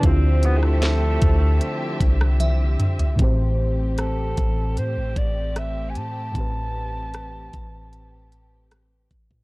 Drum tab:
HH |x-x-x-x-x-x-x-xx|x---x-x-x-x-x-x-|x---x-x-x-x-x-x-|
SD |---ro------r----|----r-------r---|----r-------r---|
T1 |------------o---|----------------|----------------|
T2 |--------------o-|----------------|----------------|
FT |---------------o|----------------|----------------|
BD |o-----o---o-----|o-----o---o-----|o-----o-------oo|